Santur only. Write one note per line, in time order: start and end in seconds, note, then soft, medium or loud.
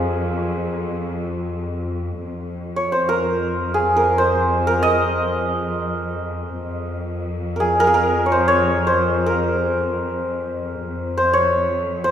0.00 2.37 F4 medium
0.00 1.63 G#4 medium
0.00 0.95 A#4 medium
0.00 0.62 C5 medium
2.76 2.98 C#5 medium
2.92 4.18 C5 medium
3.09 3.96 A#4 medium
3.74 6.78 G#4 medium
3.96 4.67 A#4 medium
4.18 6.82 C5 medium
4.67 7.50 A#4 medium
4.83 7.21 D#5 medium
7.56 7.80 A#4 soft
7.60 7.87 G#4 medium
7.80 7.94 A#4 medium
7.87 10.91 G#4 medium
7.94 9.26 A#4 medium
8.26 8.38 C#5 medium
8.32 8.54 C5 medium
8.48 8.93 C#5 medium
8.87 11.17 C5 medium
9.26 12.09 A#4 medium
11.17 11.39 C5 medium
11.33 12.10 C#5 medium
12.04 12.11 C5 medium